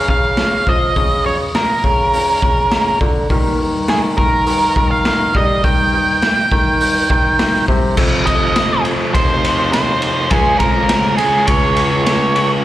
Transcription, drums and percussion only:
0.08 kick medium
0.37 snare loud
0.37 open hi-hat medium
0.67 kick medium
0.96 kick loud
0.96 open hi-hat medium
1.54 snare loud
1.54 open hi-hat medium
1.84 kick medium
2.13 open hi-hat medium
2.42 kick medium
2.71 snare loud
2.71 open hi-hat medium
3.01 kick medium
3.30 kick medium
3.30 open hi-hat medium
3.88 snare loud
3.88 open hi-hat medium
4.18 kick medium
4.47 open hi-hat medium
4.76 kick medium
5.05 snare loud
5.05 open hi-hat medium
5.35 kick medium
5.64 kick loud
5.64 open hi-hat medium
6.22 snare loud
6.22 open hi-hat medium
6.52 kick medium
6.80 open hi-hat medium
7.10 kick medium
7.39 snare loud
7.39 open hi-hat medium
7.54 snare soft
7.68 kick medium
7.97 kick loud
7.97 crash loud
8.27 kick medium
8.27 ride medium
8.56 snare loud
8.56 ride medium
8.85 ride medium
9.15 kick loud
9.15 ride medium
9.44 ride medium
9.73 snare loud
9.73 ride loud
10.02 ride medium
10.30 kick loud
10.30 ride loud
10.60 kick medium
10.60 ride medium
10.89 snare loud
10.89 ride loud
11.18 ride medium
11.47 kick loud
11.47 ride loud
11.77 ride medium
12.06 snare loud
12.06 ride loud
12.36 ride medium

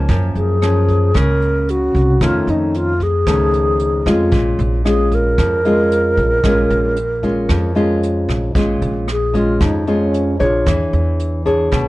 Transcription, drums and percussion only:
0.08 kick medium
0.08 closed hi-hat soft
0.36 closed hi-hat soft
0.62 cross-stick medium
0.62 closed hi-hat soft
0.88 kick soft
0.88 closed hi-hat soft
1.15 kick soft
1.15 cross-stick medium
1.15 closed hi-hat soft
1.42 closed hi-hat soft
1.69 closed hi-hat soft
1.95 kick soft
1.95 closed hi-hat soft
2.21 kick medium
2.21 cross-stick medium
2.21 closed hi-hat soft
2.48 closed hi-hat soft
2.74 closed hi-hat soft
3.00 kick soft
3.00 closed hi-hat soft
3.27 kick medium
3.27 cross-stick medium
3.27 closed hi-hat soft
3.53 closed hi-hat soft
3.79 closed hi-hat soft
4.06 kick soft
4.06 cross-stick medium
4.06 closed hi-hat soft
4.32 kick medium
4.32 closed hi-hat soft
4.59 closed hi-hat soft
4.86 cross-stick soft
4.86 closed hi-hat soft
5.12 kick soft
5.12 closed hi-hat soft
5.38 kick medium
5.38 cross-stick medium
5.38 closed hi-hat soft
5.65 closed hi-hat soft
5.91 closed hi-hat soft
6.17 kick soft
6.17 closed hi-hat soft
6.44 kick medium
6.44 cross-stick medium
6.44 closed hi-hat soft
6.70 closed hi-hat soft
6.96 closed hi-hat soft
7.23 kick soft
7.23 closed hi-hat soft
7.49 kick medium
7.49 cross-stick medium
7.49 closed hi-hat soft
7.76 closed hi-hat soft
8.03 closed hi-hat soft
8.29 kick soft
8.29 cross-stick medium
8.29 closed hi-hat soft
8.55 kick medium
8.55 closed hi-hat soft
8.82 closed hi-hat soft
9.08 cross-stick medium
9.08 closed hi-hat soft
9.34 kick soft
9.34 closed hi-hat soft
9.61 kick medium
9.61 cross-stick medium
9.61 closed hi-hat soft
9.87 closed hi-hat soft
10.14 closed hi-hat soft
10.40 kick soft
10.40 closed hi-hat soft
10.67 kick medium
10.67 cross-stick medium
10.67 closed hi-hat soft
10.93 closed hi-hat soft
11.19 closed hi-hat soft
11.46 kick soft
11.46 closed hi-hat soft
11.72 kick medium
11.72 cross-stick medium
11.72 closed hi-hat soft

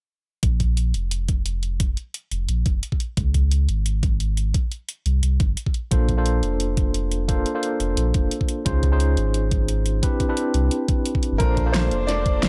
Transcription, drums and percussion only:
0.43 kick loud
0.43 closed hi-hat medium
0.60 kick medium
0.60 closed hi-hat medium
0.77 closed hi-hat medium
0.94 closed hi-hat medium
1.11 closed hi-hat medium
1.28 kick loud
1.28 closed hi-hat medium
1.46 closed hi-hat medium
1.63 closed hi-hat medium
1.80 kick loud
1.80 closed hi-hat medium
1.97 closed hi-hat medium
2.14 closed hi-hat medium
2.31 closed hi-hat medium
2.49 closed hi-hat medium
2.66 kick loud
2.66 closed hi-hat medium
2.83 closed hi-hat medium
2.92 kick medium
3.00 closed hi-hat medium
3.17 kick loud
3.17 closed hi-hat medium
3.34 kick medium
3.34 closed hi-hat medium
3.51 closed hi-hat medium
3.69 closed hi-hat medium
3.86 closed hi-hat medium
4.03 kick loud
4.03 closed hi-hat medium
4.20 closed hi-hat medium
4.37 closed hi-hat medium
4.54 kick loud
4.54 closed hi-hat medium
4.72 closed hi-hat medium
4.89 closed hi-hat medium
5.06 closed hi-hat medium
5.23 closed hi-hat medium
5.40 kick loud
5.40 closed hi-hat medium
5.57 closed hi-hat medium
5.66 kick medium
5.74 closed hi-hat medium
5.91 kick loud
5.91 closed hi-hat medium
6.09 kick medium
6.09 closed hi-hat medium
6.26 closed hi-hat medium
6.43 closed hi-hat medium
6.60 closed hi-hat medium
6.77 kick loud
6.77 closed hi-hat medium
6.94 closed hi-hat medium
7.12 closed hi-hat medium
7.29 kick loud
7.29 closed hi-hat medium
7.46 closed hi-hat medium
7.63 closed hi-hat medium
7.80 closed hi-hat medium
7.97 closed hi-hat medium
8.14 kick medium
8.14 closed hi-hat medium
8.31 closed hi-hat medium
8.41 kick medium
8.49 closed hi-hat medium
8.66 kick medium
8.66 closed hi-hat medium
8.83 kick medium
8.83 closed hi-hat medium
9.00 closed hi-hat medium
9.17 closed hi-hat medium
9.34 closed hi-hat medium
9.51 kick loud
9.51 closed hi-hat medium
9.68 closed hi-hat medium
9.86 closed hi-hat medium
10.03 kick medium
10.03 closed hi-hat medium
10.20 kick medium
10.20 closed hi-hat medium
10.37 closed hi-hat medium
10.54 closed hi-hat medium
10.71 closed hi-hat medium
10.88 kick medium
10.88 closed hi-hat medium
11.06 closed hi-hat medium
11.15 kick medium
11.23 closed hi-hat medium
11.40 kick loud
11.40 closed hi-hat medium
11.57 kick medium
11.57 closed hi-hat medium
11.74 snare loud
11.74 closed hi-hat medium
11.91 closed hi-hat medium
12.09 snare soft
12.09 closed hi-hat medium
12.26 kick loud
12.26 closed hi-hat medium
12.43 snare loud
12.43 closed hi-hat medium

